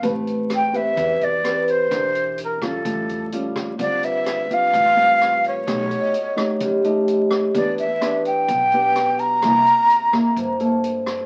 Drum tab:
HH |xxxxxxxx|xxxxxxxx|xxxxxxxx|xxxxxxxx|
SD |--r---r-|r--r---r|--r---r-|r--r---r|
BD |o---o---|o--oo--o|o---o---|o---o---|

HH |xxxxxxxx|xxxxxxxx|
SD |--r---r-|r--r---r|
BD |o---o---|o--oo---|